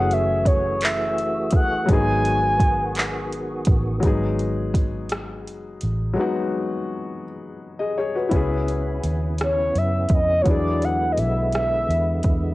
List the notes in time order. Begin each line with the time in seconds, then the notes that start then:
Already playing: F#1 E3 F#3 A3 C#4 E4 F#4 G#4 F#5
0.11 E5, closed hi-hat
0.46 C#5, kick, closed hi-hat
0.81 E5, clap, closed hi-hat
1.18 closed hi-hat
1.51 kick, closed hi-hat
1.56 F#5
1.86 G#1 D#3 F#3 G#3 B3, kick, closed hi-hat
1.92 D#4 G#4 G#5
2.25 closed hi-hat
2.60 kick, closed hi-hat
2.95 clap, closed hi-hat
3.32 closed hi-hat
3.65 A1, kick, closed hi-hat
4.00 G#1 F#3 G#3 B3, kick, closed hi-hat
4.05 D#4 G#4
4.39 closed hi-hat
4.74 kick, closed hi-hat
5.09 cross-stick, closed hi-hat
5.47 F#1, closed hi-hat
5.81 A1, closed hi-hat
6.13 F#3 G#3 B3
6.20 D#4 F#4
7.79 G#4 D#5
7.98 G#4 C#5
8.15 F#4 B4
8.29 C#2 C#3 B3 C#4 E4, kick, closed hi-hat
8.33 C#4 E4 G#4
8.68 closed hi-hat
9.03 D#2, closed hi-hat
9.38 cross-stick, closed hi-hat
9.43 C#5
9.76 F#2 E5, closed hi-hat
10.09 F2, kick, closed hi-hat
10.14 D#5
10.42 F#3 B3 C#5, kick, closed hi-hat
10.46 E2 D3 G#3 D4 E4 D5
10.51 G#4
10.82 F#5, closed hi-hat
11.12 D#5
11.17 B1 E5, closed hi-hat
11.52 E5, cross-stick, closed hi-hat
11.89 E2, closed hi-hat
12.23 E2, kick, closed hi-hat